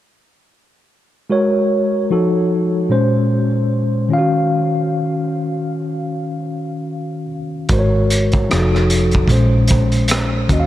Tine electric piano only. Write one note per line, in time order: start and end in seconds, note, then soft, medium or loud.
1.30 2.10 G#3 medium
1.30 2.10 F#4 medium
1.30 2.10 A#4 medium
1.30 2.11 C#5 medium
2.10 2.90 F3 medium
2.10 2.90 D#4 medium
2.10 2.91 F#4 medium
2.10 2.91 A4 medium
2.89 4.09 A#2 medium
2.89 4.10 G#3 medium
2.89 4.09 C#4 medium
2.89 4.11 C5 medium
4.09 7.25 D#3 medium
4.09 7.26 C#4 soft
4.09 4.18 F4 soft
4.13 7.28 F5 medium
4.18 7.30 F#4 medium
7.70 8.50 G#3 medium
7.70 8.50 F#4 medium
7.70 8.51 A#4 medium
7.70 7.79 C5 medium
7.79 8.54 C#5 medium
8.50 9.30 F3 medium
8.50 9.30 D#4 medium
8.50 9.30 F#4 medium
8.50 8.58 G#4 medium
8.58 9.34 A4 medium
9.29 10.49 A#2 medium
9.29 10.50 G#3 medium
9.29 10.49 C#4 medium
9.29 10.51 C5 medium
10.48 10.67 D#3 medium
10.48 10.67 C#4 medium
10.48 10.67 F#4 medium
10.53 10.59 D#5 soft
10.60 10.67 F5 medium